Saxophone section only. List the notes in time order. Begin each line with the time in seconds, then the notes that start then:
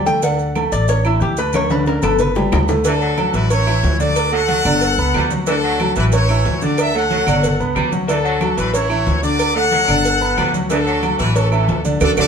2.85 E3
3.01 F#3
3.33 E3
4.32 F#3
4.48 F#3
5.14 G3
5.47 E3
5.63 F#3
5.96 E3
6.94 F#3
7.10 F#3
7.75 G3
8.08 E3
8.24 F#3
8.57 E3
9.55 F#3
9.71 F#3
10.37 G3
10.70 E3
10.86 F#3
11.18 E3
12.17 F#3